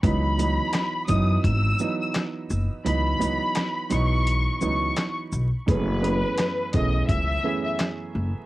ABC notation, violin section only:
X:1
M:4/4
L:1/16
Q:"Swing 16ths" 1/4=85
K:F#dor
V:1 name="Violin section"
b6 d'2 e'3 e' z4 | b6 c'4 c'3 z3 | B6 d2 e3 e z4 |]